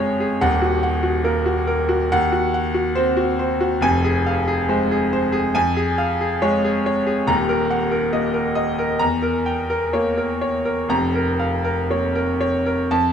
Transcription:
Already playing: F2 G#3 G#4 C#5 F5 G#5
0.20 G#4
0.41 D#1 D#2 F#5
0.62 F#4
0.83 F#5
1.03 F#4
1.24 A#3 A#4
1.46 F#4
1.67 A#4
1.89 F#4
2.12 D#2 F#5
2.32 F#4
2.54 F#5
2.74 F#4
2.95 C4 C5
3.17 F#4
3.39 C5
3.61 F#4
3.81 F1 F2 G#5
4.04 G#4
4.26 F5
4.48 G#4
4.69 G#3 C5
4.91 G#4
5.13 C5
5.32 G#4
5.55 F2 G#5
5.77 G#4
5.98 F5
6.21 G#4
6.42 G#3 C#5
6.65 G#4
6.86 C#5
7.07 G#4
7.27 D#1 D#2 A#5
7.49 A#4
7.71 F#5
7.91 A#4
8.13 A#3 D#5
8.34 A#4
8.55 D#5
8.79 A#4
8.99 E2 A#5
9.22 A#4
9.46 G5
9.70 A#4
9.93 A#3 C#5
10.17 A#4
10.41 C#5
10.65 A#4
10.89 F1 F2 A#5
11.15 A#4
11.39 F5
11.64 A#4
11.90 A#3 C#5
12.15 A#4
12.41 C#5
12.66 A#4
12.91 F2 A5

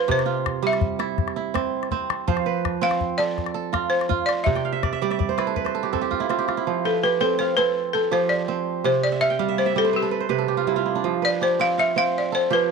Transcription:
Already playing: F3 C4 F4 A4
0.08 C3 G4 C5, calabash thump, calabash click
0.19 calabash click
0.26 F4
0.46 calabash thump, calabash click
0.63 G3
0.67 E5
0.73 calabash click
0.81 calabash thump
0.99 E4, calabash click
1.18 calabash thump, calabash click
1.28 calabash click
1.36 E4
1.54 C4, calabash thump, calabash click
1.83 calabash click
1.91 C4, calabash thump
2.10 calabash click
2.28 F3 C5, calabash thump, calabash click
2.37 calabash click
2.46 B4
2.65 calabash thump, calabash click
2.81 C4 F5
2.91 calabash click
3.01 calabash thump
3.18 A4 D5
3.38 calabash thump, calabash click
3.46 calabash click
3.54 A4
3.73 F4, calabash thump, calabash click
3.90 C5
4.01 calabash click
4.09 F4, calabash thump
4.26 D5, calabash click
4.44 C3 E5, calabash thump
4.55 G5, calabash click
4.65 F5
4.73 E5
4.83 D5, calabash thump, calabash click
4.93 E5, calabash click
5.02 G3 D5
5.10 E5, calabash click
5.19 D5, calabash thump
5.29 C5
5.38 E4 B4, calabash click
5.47 A4
5.56 B4, calabash thump
5.65 C5, calabash click
5.75 A4
5.83 G4, calabash click
5.93 C4 A4, calabash thump
6.02 G4
6.11 F4, calabash thump
6.20 E4
6.29 C4 F4, calabash click
6.39 G4
6.48 F4, calabash click
6.57 E4
6.67 F3
6.85 A4 B4
7.03 G4 B4
7.21 C4 A4
7.39 C5 F5
7.57 C4 A4 B4
7.93 A4
8.11 F3 G4 C5
8.29 D5
8.48 C4
8.84 C3 C5
9.04 D5
9.12 E5
9.21 E5 F5
9.30 G5
9.39 G3 F5
9.48 E5
9.58 C5 D5
9.66 E5
9.76 G3 A4 D5
9.84 C5
9.93 G4 B4
10.02 A4
10.11 B4
10.20 C5
10.29 C3 B4
10.38 A4
10.48 G4
10.57 F4
10.67 G3 E4
10.76 F4
10.86 E4
10.95 D4
11.04 F3
11.22 B4 D5
11.41 G4 C5
11.60 C4 F5
11.78 E5 F5
11.96 C4 C5 F5
12.18 D5
12.32 A4 C5
12.50 F3 G4 B4

